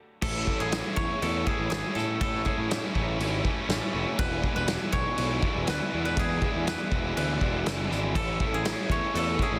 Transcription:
0.22 picked electric bass A1, overdriven electric guitar A2 E3 A3 C#4 E4 A4 C#5, analog synth pad A3 G#5 C#6 E6, koto A4, kick, crash
0.46 overdriven electric guitar A2 E3 A3 C#4 E4 A4 C#5, kick
0.60 picked electric bass A1, koto G#4
0.71 overdriven electric guitar A2 E3 A3 C#4 E4 A4 C#5, snare, crash
0.96 picked electric bass E2, overdriven electric guitar A2 E3 A3 C#4 E4 A4 C#5, koto C#5, kick
1.21 picked electric bass E2, overdriven electric guitar A2 E3 A3 C#4 E4 A4 C#5, koto A4, crash
1.46 overdriven electric guitar A2 E3 A3 C#4 E4 A4 C#5, koto G#4, kick
1.59 picked electric bass A1
1.70 picked electric bass G#1, overdriven electric guitar A2 E3 A3 C#4 E4 A4 C#5, koto G#4, snare, crash
1.95 picked electric bass A2, overdriven electric guitar A2 E3 A3 C#4 E4 A4 C#5, koto A4, snare
2.21 overdriven electric guitar A2 E3 A3 C#4 E4 A4 C#5, picked electric bass A2, koto A4, kick, crash
2.45 overdriven electric guitar A2 E3 A3 C#4 E4 A4 C#5, koto G#4, kick
2.58 picked electric bass A2
2.69 overdriven electric guitar A2 E3 A3 C#4 E4 A4 C#5, snare, crash
2.93 picked electric bass A1, overdriven electric guitar A2 E3 A3 C#4 E4, kick
2.98 overdriven electric guitar A4 C#5
3.18 picked electric bass G#1, overdriven electric guitar A2 E3 A3 C#4 E4 A4, crash
3.22 overdriven electric guitar C#5
3.43 overdriven electric guitar A2 E3 A3 C#4 E4 A4, kick
3.47 overdriven electric guitar C#5
3.68 picked electric bass A1, overdriven electric guitar A2 E3 A3 C#4 E4 A4 C#5, snare, crash
3.93 picked electric bass F1, overdriven electric guitar A2 E3 A3 C#4 E4 A4 C#5
4.16 picked electric bass E1, overdriven electric guitar E2 B2 E3 G#3 B3 D4 E4 G#4, koto B4, analog synth pad B4, kick, crash
4.20 overdriven electric guitar D5
4.41 overdriven electric guitar E2 B2 E3 G#3 B3 D4 E4 G#4 D5, kick
4.56 picked electric bass E1, koto B4
4.66 overdriven electric guitar E2 B2 E3 G#3 B3 D4 E4 G#4 D5, snare, crash
4.91 picked electric bass B1, overdriven electric guitar E2 B2 E3 G#3 B3 D4 E4 G#4 D5, koto C#5, kick
5.16 picked electric bass B1, overdriven electric guitar E2 B2 E3 G#3 B3 D4 E4 G#4 D5, crash
5.41 overdriven electric guitar E2 B2 E3 G#3 B3 D4 E4 G#4 D5, kick
5.56 picked electric bass E1
5.66 picked electric bass D2, overdriven electric guitar E2 B2 E3 G#3 B3 D4 E4 G#4 D5, koto B4, snare, crash
5.92 overdriven electric guitar E2 B2 E3 G#3 B3 D4 E4 G#4 D5, picked electric bass E2
6.05 koto B4
6.16 overdriven electric guitar E2 B2 E3 G#3 B3 D4 E4 G#4 D5, picked electric bass E2, koto G#4, kick, crash
6.41 overdriven electric guitar E2 B2 E3 G#3 B3 D4 E4 G#4 D5, kick
6.55 picked electric bass E2
6.66 overdriven electric guitar E2 B2 E3 G#3 B3 D4 E4 G#4 D5, koto B4, snare, crash
6.91 picked electric bass E1, overdriven electric guitar E2 B2 E3 G#3 B3 D4 E4 G#4 D5, kick
7.15 picked electric bass D2, overdriven electric guitar E2 B2 E3 G#3 B3 D4 E4 G#4 D5, koto B4, crash
7.41 picked electric bass E1, overdriven electric guitar E2 B2 E3 G#3 B3 D4 E4 G#4 D5, kick
7.65 picked electric bass F#1, overdriven electric guitar E2 B2 E3 G#3 B3 D4 E4 G#4 D5, snare, crash
7.90 picked electric bass G#1, overdriven electric guitar E2 B2 E3 G#3 B3 D4 E4 G#4 D5, snare
8.14 picked electric bass A1, overdriven electric guitar A2 E3 A3 C#4 E4 A4 C#5, analog synth pad A3 C#6, koto A4, kick, crash
8.39 overdriven electric guitar A2 E3 A3 C#4 E4 A4 C#5, kick
8.53 picked electric bass A1, koto G#4
8.65 overdriven electric guitar A2 E3 A3 C#4 E4 A4 C#5, snare, crash
8.89 picked electric bass E2, overdriven electric guitar A2 E3 A3 C#4 E4 A4 C#5, koto C#5, kick
9.14 picked electric bass E2, overdriven electric guitar A2 E3 A3 C#4 E4 A4 C#5, koto A4, crash
9.39 overdriven electric guitar A2 E3 A3 C#4 E4 A4 C#5, koto G#4, kick
9.52 picked electric bass A1

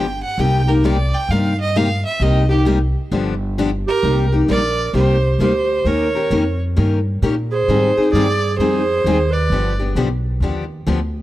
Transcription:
Already playing: upright bass G1, violin G5
0.23 violin F#5
0.38 upright bass C2, steel-string acoustic guitar C3 G3 A#3 D#4 G4, violin G5
0.67 steel-string acoustic guitar A#3 D#4 G4, violin A#4
0.84 steel-string acoustic guitar C3 G3 A#3 D#4 G4, violin D5
1.14 violin G5
1.29 upright bass G2, steel-string acoustic guitar C3 G3 A#3 D#4 G4, violin F5
1.60 violin D#5
1.76 steel-string acoustic guitar C3 G3 A#3 D#4 G4, violin F5
2.05 violin E5
2.20 upright bass C2, steel-string acoustic guitar C3 G3 A#3 D#4 G4, violin D#5
2.49 steel-string acoustic guitar A#3 D#4 G4, violin G4
2.65 steel-string acoustic guitar C3 G3 A#3 D#4 G4
3.11 upright bass G1, steel-string acoustic guitar D3 F3 B3 D4 G4
3.58 steel-string acoustic guitar D3 F3 B3 D4 G4
3.87 clarinet G4, violin A#4
4.03 upright bass C2, steel-string acoustic guitar C3 G3 A#3 D#4 G4
4.32 steel-string acoustic guitar A#3 D#4 G4
4.48 upright bass A#1, steel-string acoustic guitar C3 G3 A#3 D#4 G4, clarinet A#4, violin D5
4.93 upright bass C2, steel-string acoustic guitar C3 G3 A#3 D#4 G4, clarinet G4, violin C5
5.39 upright bass D2, steel-string acoustic guitar C3 G3 A#3 D#4 G4, clarinet G4, violin C5
5.84 upright bass D#2, steel-string acoustic guitar D#3 A#3 C#4 G4 A#4, clarinet A#4, violin C#5
6.15 steel-string acoustic guitar C#4 G4 A#4
6.30 upright bass F2, steel-string acoustic guitar D#3 A#3 C#4 G4 A#4
6.76 upright bass G2, steel-string acoustic guitar D#3 A#3 C#4 G4 A#4
7.22 upright bass A#2, steel-string acoustic guitar D#3 A#3 C#4 G4 A#4
7.51 clarinet G#4, violin C5
7.68 upright bass G#2, steel-string acoustic guitar D#3 G3 C4 D#4 G#4
7.97 steel-string acoustic guitar C4 D#4 G#4, muted upright bass stroke
8.11 upright bass G2, steel-string acoustic guitar D#3 G3 C4, clarinet G#4, violin D5
8.16 steel-string acoustic guitar D#4 G#4
8.57 upright bass F2, steel-string acoustic guitar D#3 G3 C4 D#4, clarinet G#4, violin C5
8.61 steel-string acoustic guitar G#4
9.04 upright bass D#2, steel-string acoustic guitar D#3 G3 C4 D#4 G#4
9.31 clarinet B4, violin D5
9.50 upright bass G1, steel-string acoustic guitar D3 F3 B3 D4 G4
9.79 steel-string acoustic guitar B3 D4 G4
9.95 upright bass B1, steel-string acoustic guitar D3 F3 B3 D4 G4
10.40 upright bass D#2, steel-string acoustic guitar D3 F3 B3 D4 G4
10.87 upright bass D2, steel-string acoustic guitar D3 F3 B3 D4 G4

